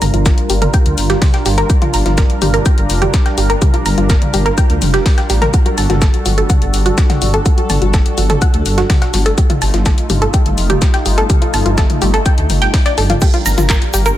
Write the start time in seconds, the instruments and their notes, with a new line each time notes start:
Already playing: analog synth pad G3 D4 F4 A#4
0.02 detuned saw bass G1, synth arpeggio sound A#5, open hi-hat, mid tom, shaker
0.14 detuned saw bass G1, synth arpeggio sound F4, closed hi-hat
0.26 synth arpeggio sound A#4, kick, snare, closed hi-hat, shaker
0.38 closed hi-hat
0.50 detuned saw bass G1, synth arpeggio sound G4, open hi-hat, shaker
0.62 synth arpeggio sound A#4, closed hi-hat, mid tom
0.74 synth arpeggio sound G5, kick, closed hi-hat, shaker
0.86 detuned saw bass D2, closed hi-hat
0.98 detuned saw bass G1, open hi-hat, shaker
1.10 synth arpeggio sound G4, snare, closed hi-hat
1.22 kick, snare, closed hi-hat, open hi-hat, mid tom
1.34 synth arpeggio sound G5, snare, closed hi-hat
1.46 detuned saw bass G1, synth arpeggio sound G4, snare, open hi-hat, shaker
1.58 synth arpeggio sound A#4, closed hi-hat
1.70 synth arpeggio sound G4, kick, closed hi-hat, shaker
1.82 synth arpeggio sound F4, closed hi-hat, mid tom
1.94 detuned saw bass G1, synth arpeggio sound A#5, open hi-hat, shaker
2.06 detuned saw bass G1, synth arpeggio sound F4, snare, closed hi-hat
2.18 synth arpeggio sound A#4, kick, snare, closed hi-hat, shaker
2.30 closed hi-hat
2.42 detuned saw bass G1, synth arpeggio sound G4, open hi-hat, mid tom, shaker
2.54 synth arpeggio sound A#4, closed hi-hat
2.66 synth arpeggio sound G5, kick, closed hi-hat, shaker
2.78 detuned saw bass G1, closed hi-hat
2.90 detuned saw bass F1, open hi-hat, shaker
3.02 synth arpeggio sound G4, closed hi-hat, mid tom
3.14 kick, snare, closed hi-hat, shaker
3.26 synth arpeggio sound G5, snare, closed hi-hat
3.38 detuned saw bass G1, synth arpeggio sound G4, open hi-hat, shaker
3.50 synth arpeggio sound A#4, closed hi-hat
3.62 synth arpeggio sound G4, kick, closed hi-hat, mid tom, shaker
3.74 synth arpeggio sound F4, closed hi-hat
3.86 detuned saw bass G1, synth arpeggio sound A#5, open hi-hat, shaker
3.98 detuned saw bass G1, synth arpeggio sound F4, closed hi-hat
4.10 synth arpeggio sound A#4, kick, snare, closed hi-hat, shaker
4.22 closed hi-hat, mid tom
4.34 detuned saw bass G1, synth arpeggio sound G4, open hi-hat, shaker
4.46 synth arpeggio sound A#4, closed hi-hat
4.58 synth arpeggio sound G5, kick, closed hi-hat, shaker
4.70 detuned saw bass D2, closed hi-hat
4.82 detuned saw bass F1, open hi-hat, mid tom, shaker
4.94 synth arpeggio sound G4, snare, closed hi-hat
5.06 kick, snare, closed hi-hat, open hi-hat
5.18 synth arpeggio sound G5, snare, closed hi-hat
5.30 detuned saw bass A1, synth arpeggio sound G4, snare, open hi-hat, shaker
5.42 synth arpeggio sound A#4, closed hi-hat, mid tom
5.54 synth arpeggio sound F#4, analog synth pad F#4 A4, kick, closed hi-hat, shaker
5.66 synth arpeggio sound F#4, closed hi-hat
5.78 detuned saw bass G1, synth arpeggio sound A5, open hi-hat, shaker
5.90 detuned saw bass G1, synth arpeggio sound F#4, snare, closed hi-hat, mid tom
6.02 synth arpeggio sound A4, kick, snare, closed hi-hat, shaker
6.14 closed hi-hat
6.26 detuned saw bass G1, synth arpeggio sound F#4, open hi-hat, shaker
6.38 synth arpeggio sound A4, closed hi-hat
6.50 synth arpeggio sound F#5, kick, closed hi-hat, mid tom, shaker
6.62 detuned saw bass G1, closed hi-hat
6.74 detuned saw bass G1, open hi-hat, shaker
6.86 synth arpeggio sound F#4, closed hi-hat
6.98 kick, snare, closed hi-hat, shaker
7.10 synth arpeggio sound F#5, snare, closed hi-hat, mid tom
7.22 detuned saw bass G1, synth arpeggio sound F#4, open hi-hat, shaker
7.34 synth arpeggio sound A4, closed hi-hat
7.46 synth arpeggio sound F#4, kick, closed hi-hat, shaker
7.58 synth arpeggio sound F#4, closed hi-hat
7.70 detuned saw bass G1, synth arpeggio sound A5, open hi-hat, mid tom, shaker
7.82 detuned saw bass G1, synth arpeggio sound F#4, closed hi-hat
7.94 synth arpeggio sound A4, kick, snare, closed hi-hat, shaker
8.06 closed hi-hat
8.18 detuned saw bass G1, synth arpeggio sound F#4, open hi-hat, shaker
8.30 synth arpeggio sound A4, closed hi-hat, mid tom
8.42 synth arpeggio sound F#5, kick, closed hi-hat, shaker
8.54 detuned saw bass D2, closed hi-hat
8.66 detuned saw bass G1, open hi-hat, shaker
8.78 synth arpeggio sound F#4, snare, closed hi-hat
8.90 kick, snare, closed hi-hat, open hi-hat, mid tom
9.02 synth arpeggio sound F#5, snare, closed hi-hat
9.14 detuned saw bass G1, synth arpeggio sound F#4, snare, open hi-hat, shaker
9.26 synth arpeggio sound A4, closed hi-hat
9.38 analog synth pad A3 D#4 F4, synth arpeggio sound G4, kick, closed hi-hat, shaker
9.50 synth arpeggio sound F4, closed hi-hat, mid tom
9.62 detuned saw bass G1, synth arpeggio sound A5, open hi-hat, shaker
9.74 detuned saw bass G1, synth arpeggio sound F4, snare, closed hi-hat
9.86 synth arpeggio sound A4, kick, snare, closed hi-hat, shaker
9.98 closed hi-hat
10.10 detuned saw bass G1, synth arpeggio sound G4, open hi-hat, mid tom, shaker
10.22 synth arpeggio sound A4, closed hi-hat
10.34 synth arpeggio sound G5, kick, closed hi-hat, shaker
10.46 detuned saw bass G1, closed hi-hat
10.58 detuned saw bass F1, open hi-hat, shaker
10.70 synth arpeggio sound G4, closed hi-hat, mid tom
10.82 kick, snare, closed hi-hat, shaker
10.94 synth arpeggio sound G5, snare, closed hi-hat
11.06 detuned saw bass G1, synth arpeggio sound G4, open hi-hat, shaker
11.18 synth arpeggio sound A4, closed hi-hat
11.30 synth arpeggio sound G4, kick, closed hi-hat, mid tom, shaker
11.42 synth arpeggio sound F4, closed hi-hat
11.54 detuned saw bass G1, synth arpeggio sound A5, open hi-hat, shaker
11.66 detuned saw bass G1, synth arpeggio sound F4, closed hi-hat
11.78 synth arpeggio sound A4, kick, snare, closed hi-hat, shaker
11.90 closed hi-hat, mid tom
12.02 detuned saw bass G1, synth arpeggio sound G4, open hi-hat, shaker
12.14 synth arpeggio sound A4, closed hi-hat
12.26 synth arpeggio sound G5, kick, closed hi-hat, shaker
12.38 detuned saw bass D2, closed hi-hat
12.50 detuned saw bass G1, open hi-hat, mid tom, shaker
12.62 synth arpeggio sound G5, snare, closed hi-hat
12.74 kick, snare, closed hi-hat, open hi-hat
12.86 synth arpeggio sound D5, snare, closed hi-hat
12.98 detuned saw bass G1, synth arpeggio sound A4, snare, open hi-hat, shaker
13.10 synth arpeggio sound F4, closed hi-hat, mid tom
13.21 analog synth pad G3 D4 F4 A#4, synth arpeggio sound G4, kick, closed hi-hat, crash, shaker
13.34 synth arpeggio sound F4, closed hi-hat
13.46 detuned saw bass G1, synth arpeggio sound A#5, open hi-hat, shaker
13.58 detuned saw bass G1, synth arpeggio sound F4, snare, closed hi-hat, mid tom, shaker
13.70 synth arpeggio sound A#4, kick, snare, clap, closed hi-hat, shaker
13.82 closed hi-hat
13.94 detuned saw bass G1, synth arpeggio sound G4, open hi-hat, shaker
14.05 synth arpeggio sound A#4, closed hi-hat, shaker